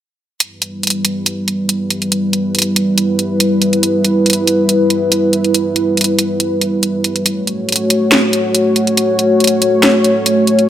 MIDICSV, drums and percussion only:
0, 0, Header, 1, 2, 480
1, 0, Start_track
1, 0, Key_signature, 1, "minor"
1, 0, Tempo, 428571
1, 451, Time_signature, 4, 2, 24, 8
1, 11973, End_track
2, 0, Start_track
2, 0, Title_t, "Drums"
2, 451, Note_on_c, 9, 42, 74
2, 563, Note_off_c, 9, 42, 0
2, 692, Note_on_c, 9, 42, 47
2, 804, Note_off_c, 9, 42, 0
2, 934, Note_on_c, 9, 42, 43
2, 976, Note_off_c, 9, 42, 0
2, 976, Note_on_c, 9, 42, 58
2, 1011, Note_off_c, 9, 42, 0
2, 1011, Note_on_c, 9, 42, 70
2, 1123, Note_off_c, 9, 42, 0
2, 1172, Note_on_c, 9, 42, 74
2, 1284, Note_off_c, 9, 42, 0
2, 1413, Note_on_c, 9, 42, 72
2, 1525, Note_off_c, 9, 42, 0
2, 1655, Note_on_c, 9, 42, 46
2, 1767, Note_off_c, 9, 42, 0
2, 1893, Note_on_c, 9, 42, 73
2, 2005, Note_off_c, 9, 42, 0
2, 2133, Note_on_c, 9, 42, 47
2, 2245, Note_off_c, 9, 42, 0
2, 2260, Note_on_c, 9, 42, 33
2, 2372, Note_off_c, 9, 42, 0
2, 2373, Note_on_c, 9, 42, 71
2, 2485, Note_off_c, 9, 42, 0
2, 2612, Note_on_c, 9, 42, 46
2, 2724, Note_off_c, 9, 42, 0
2, 2853, Note_on_c, 9, 42, 44
2, 2896, Note_off_c, 9, 42, 0
2, 2896, Note_on_c, 9, 42, 55
2, 2933, Note_off_c, 9, 42, 0
2, 2933, Note_on_c, 9, 42, 70
2, 3045, Note_off_c, 9, 42, 0
2, 3094, Note_on_c, 9, 42, 72
2, 3206, Note_off_c, 9, 42, 0
2, 3333, Note_on_c, 9, 42, 69
2, 3445, Note_off_c, 9, 42, 0
2, 3572, Note_on_c, 9, 42, 47
2, 3684, Note_off_c, 9, 42, 0
2, 3809, Note_on_c, 9, 42, 71
2, 3921, Note_off_c, 9, 42, 0
2, 4049, Note_on_c, 9, 42, 46
2, 4161, Note_off_c, 9, 42, 0
2, 4177, Note_on_c, 9, 42, 32
2, 4289, Note_off_c, 9, 42, 0
2, 4290, Note_on_c, 9, 42, 68
2, 4402, Note_off_c, 9, 42, 0
2, 4531, Note_on_c, 9, 42, 45
2, 4643, Note_off_c, 9, 42, 0
2, 4771, Note_on_c, 9, 42, 42
2, 4814, Note_off_c, 9, 42, 0
2, 4814, Note_on_c, 9, 42, 55
2, 4851, Note_off_c, 9, 42, 0
2, 4851, Note_on_c, 9, 42, 68
2, 4963, Note_off_c, 9, 42, 0
2, 5011, Note_on_c, 9, 42, 70
2, 5123, Note_off_c, 9, 42, 0
2, 5252, Note_on_c, 9, 42, 66
2, 5364, Note_off_c, 9, 42, 0
2, 5491, Note_on_c, 9, 42, 46
2, 5603, Note_off_c, 9, 42, 0
2, 5731, Note_on_c, 9, 42, 68
2, 5843, Note_off_c, 9, 42, 0
2, 5970, Note_on_c, 9, 42, 45
2, 6082, Note_off_c, 9, 42, 0
2, 6098, Note_on_c, 9, 42, 31
2, 6210, Note_off_c, 9, 42, 0
2, 6210, Note_on_c, 9, 42, 68
2, 6322, Note_off_c, 9, 42, 0
2, 6450, Note_on_c, 9, 42, 44
2, 6562, Note_off_c, 9, 42, 0
2, 6690, Note_on_c, 9, 42, 41
2, 6731, Note_off_c, 9, 42, 0
2, 6731, Note_on_c, 9, 42, 53
2, 6768, Note_off_c, 9, 42, 0
2, 6768, Note_on_c, 9, 42, 65
2, 6880, Note_off_c, 9, 42, 0
2, 6928, Note_on_c, 9, 42, 68
2, 7040, Note_off_c, 9, 42, 0
2, 7168, Note_on_c, 9, 42, 66
2, 7280, Note_off_c, 9, 42, 0
2, 7408, Note_on_c, 9, 42, 44
2, 7520, Note_off_c, 9, 42, 0
2, 7648, Note_on_c, 9, 42, 67
2, 7760, Note_off_c, 9, 42, 0
2, 7888, Note_on_c, 9, 42, 45
2, 8000, Note_off_c, 9, 42, 0
2, 8015, Note_on_c, 9, 42, 30
2, 8127, Note_off_c, 9, 42, 0
2, 8128, Note_on_c, 9, 42, 69
2, 8240, Note_off_c, 9, 42, 0
2, 8371, Note_on_c, 9, 42, 44
2, 8483, Note_off_c, 9, 42, 0
2, 8609, Note_on_c, 9, 42, 42
2, 8651, Note_off_c, 9, 42, 0
2, 8651, Note_on_c, 9, 42, 54
2, 8688, Note_off_c, 9, 42, 0
2, 8688, Note_on_c, 9, 42, 68
2, 8800, Note_off_c, 9, 42, 0
2, 8850, Note_on_c, 9, 42, 69
2, 8962, Note_off_c, 9, 42, 0
2, 9091, Note_on_c, 9, 38, 107
2, 9091, Note_on_c, 9, 42, 69
2, 9203, Note_off_c, 9, 38, 0
2, 9203, Note_off_c, 9, 42, 0
2, 9331, Note_on_c, 9, 42, 45
2, 9443, Note_off_c, 9, 42, 0
2, 9571, Note_on_c, 9, 42, 70
2, 9683, Note_off_c, 9, 42, 0
2, 9811, Note_on_c, 9, 42, 46
2, 9923, Note_off_c, 9, 42, 0
2, 9937, Note_on_c, 9, 42, 31
2, 10049, Note_off_c, 9, 42, 0
2, 10051, Note_on_c, 9, 42, 71
2, 10163, Note_off_c, 9, 42, 0
2, 10292, Note_on_c, 9, 42, 47
2, 10404, Note_off_c, 9, 42, 0
2, 10532, Note_on_c, 9, 42, 43
2, 10575, Note_off_c, 9, 42, 0
2, 10575, Note_on_c, 9, 42, 57
2, 10611, Note_off_c, 9, 42, 0
2, 10611, Note_on_c, 9, 42, 71
2, 10723, Note_off_c, 9, 42, 0
2, 10771, Note_on_c, 9, 42, 73
2, 10883, Note_off_c, 9, 42, 0
2, 11011, Note_on_c, 9, 38, 102
2, 11011, Note_on_c, 9, 42, 71
2, 11123, Note_off_c, 9, 38, 0
2, 11123, Note_off_c, 9, 42, 0
2, 11250, Note_on_c, 9, 42, 47
2, 11362, Note_off_c, 9, 42, 0
2, 11491, Note_on_c, 9, 42, 71
2, 11603, Note_off_c, 9, 42, 0
2, 11730, Note_on_c, 9, 42, 47
2, 11842, Note_off_c, 9, 42, 0
2, 11857, Note_on_c, 9, 42, 32
2, 11969, Note_off_c, 9, 42, 0
2, 11973, End_track
0, 0, End_of_file